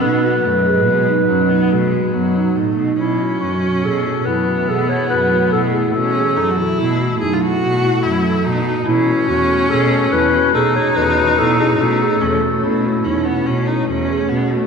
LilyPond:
<<
  \new Staff \with { instrumentName = "Clarinet" } { \time 7/4 \key b \mixolydian \tempo 4 = 143 b'1. r4 | e'4 fis'4 a'4 b'4 a'8 cis''8 b'4 a'8 gis'8 | a'2 e'2 r2. | e'4 fis'4 a'4 b'4 a'8 cis''8 b'4 a'8 gis'8 |
a'2 e'2 r2. | }
  \new Staff \with { instrumentName = "Vibraphone" } { \time 7/4 \key b \mixolydian dis'8 fis'8 b'8 gis'8 fis'8 dis'8 cis'8 r8 fis'8 fis'8 b8 dis'8 dis'8 dis'8 | e'8 fis'8 fis'8 fis'8 gis'8 fis'8 e'8 r8 gis'8 gis'8 fis'8 fis'8 r8 e'8 | fis'8 gis'8 a'8 fis'8 e'8 fis'8 dis'8 e'8 fis'8 e'8 fis'8 a'8 fis'8 fis'8 | e'8 r8 fis'8 fis'8 gis'8 fis'8 e'8 r8 gis'8 r8 fis'8 fis'8 e'8 e'8 |
fis'8 gis'8 r8 fis'8 e'8 fis'8 dis'8 e'8 fis'8 e'8 fis'8 gis'8 fis'8 fis'8 | }
  \new Staff \with { instrumentName = "Viola" } { \time 7/4 \key b \mixolydian b4 a4 gis4 fis8 b8 a8 gis8 fis4 a4 | cis'2. b1 | cis'4 \tuplet 3/2 { dis'8 fis'16 e'8.~ } e'4 \tuplet 3/2 { gis'8 eis'16 fis'8.~ } fis'4 e'4 dis'4 | cis'1 dis'2.~ |
dis'4 cis'8 a4. cis'8 b8 cis'8 dis'8 cis'4 b8 a8 | }
  \new Staff \with { instrumentName = "Ambient pad" } { \clef bass \time 7/4 \key b \mixolydian << { <fis dis''>1.~ <fis dis''>4 | <e a>1.~ <e a>4~ | <e a>1.~ <e a>4 | <a cis'>1.~ <a cis'>4~ |
<a cis'>1.~ <a cis'>4 | } \\ { b,1.~ b,4 | b,1.~ b,4~ | b,1.~ b,4~ | b,1.~ b,4~ |
b,1.~ b,4 | } >> }
  \new Staff \with { instrumentName = "Cello" } { \clef bass \time 7/4 \key b \mixolydian b,4 fis,4 b,4 fis,4 b,4 fis,4 a,8 b,8 | b,4 fis,4 b,4 fis,4 b,4 fis,4 b,4 | b,4 fis,4 b,4 fis,4 b,4 fis,4 b,4 | b,4 e,4 b,4 e,4 b,4 e,4 b,4 |
b,4 e,4 b,4 e,4 b,4 e,4 b,4 | }
>>